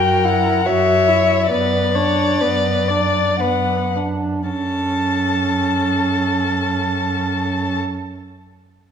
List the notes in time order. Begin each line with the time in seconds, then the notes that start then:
Already playing: F#2 F#4 A#4 G5
0.24 E4 F#5
0.66 F#2 F#4 C#5 E5
1.08 E4
1.51 F#2 B3 B4 D5
1.95 D4 C#5
2.41 F#2 B3 B4
2.88 D4 D5
3.40 F#2 B3 B4 F#5
3.96 D4
4.49 F#2 C#4 A4 A5